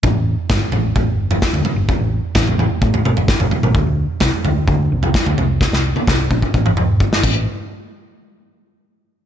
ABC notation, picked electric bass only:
X:1
M:4/4
L:1/16
Q:1/4=129
K:Am
V:1 name="Picked electric bass" clef=bass
A,,, A,,,2 z G,,, z A,,,2 A,,,2 G,,,2 z D,, z G,,, | z A,,,2 z A,,,2 A,,, z A,,2 G,,,3 G,,, z A,,, | D,, D,,2 z C,, z D,,2 D,,2 C,,2 z D,, C,,2- | C,, C,,2 z C,,2 _B,,, z A,,,2 E,,,2 G,,,2 A,,,2 |
z16 |]